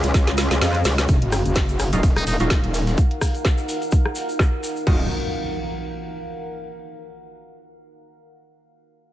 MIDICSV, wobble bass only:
0, 0, Header, 1, 2, 480
1, 0, Start_track
1, 0, Key_signature, -6, "minor"
1, 0, Tempo, 472441
1, 1105, Time_signature, 4, 2, 24, 8
1, 9274, End_track
2, 0, Start_track
2, 0, Title_t, "Wobble bass"
2, 0, Program_c, 0, 39
2, 39, Note_on_c, 0, 37, 102
2, 128, Note_off_c, 0, 37, 0
2, 145, Note_on_c, 0, 37, 97
2, 497, Note_off_c, 0, 37, 0
2, 518, Note_on_c, 0, 37, 99
2, 608, Note_off_c, 0, 37, 0
2, 625, Note_on_c, 0, 41, 103
2, 848, Note_off_c, 0, 41, 0
2, 865, Note_on_c, 0, 37, 100
2, 1088, Note_off_c, 0, 37, 0
2, 1105, Note_on_c, 0, 27, 93
2, 1217, Note_off_c, 0, 27, 0
2, 1238, Note_on_c, 0, 30, 97
2, 1457, Note_off_c, 0, 30, 0
2, 1478, Note_on_c, 0, 30, 96
2, 1937, Note_off_c, 0, 30, 0
2, 1959, Note_on_c, 0, 27, 102
2, 2417, Note_off_c, 0, 27, 0
2, 2439, Note_on_c, 0, 27, 97
2, 2657, Note_off_c, 0, 27, 0
2, 2679, Note_on_c, 0, 27, 100
2, 3008, Note_off_c, 0, 27, 0
2, 4946, Note_on_c, 0, 27, 98
2, 5169, Note_off_c, 0, 27, 0
2, 9274, End_track
0, 0, End_of_file